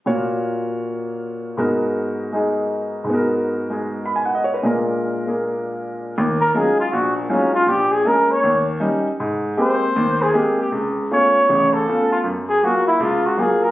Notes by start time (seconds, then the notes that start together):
0.06 A#2 A#3 F4 F#4 C#5
1.57 G#2 G#3 B3 F#4 A#4
2.33 G#3 D#4 G#4
3.04 G#2 G#3
3.10 B3 F#4
3.15 A#4
3.70 G#3 D#4 G#4
4.06 B5
4.16 G#5
4.25 F#5
4.35 D#5
4.44 C#5
4.54 B4
4.63 A#2 G#3 D4 F4 A#4
5.27 A#3 F4 G#4 A#4
6.18 D#2
6.40 A#4
6.54 F#3 G#3 C#4 D#4 F4 G#4
6.80 F4
6.92 A#1 F#4
7.16 A#3
7.30 F#3 G#3 C#4 D#4 F4
7.54 F4
7.66 A#1 G4
7.91 G#4
8.05 G#3 A#3 C#4 A#4
8.31 C#5
8.44 D#2
8.80 G3 C#4 D#4
9.20 G#2
9.57 G#3 A#3 C4 G4 C5
9.96 D#2
10.22 G#4
10.34 G#3 A#3 C4 G4
10.60 G4
10.72 C#2
11.11 A3 B3 C#4 F4 C#5
11.49 A1 C#3
11.73 A4
11.88 A3 B3 C#4 F4
12.12 F4
12.24 F#2
12.49 G#4
12.63 F#3 A#3 F4 F#4
12.87 E4
13.00 C#2 F4
13.26 F#4
13.37 F#3 A#3 F4 G#4
13.63 A#4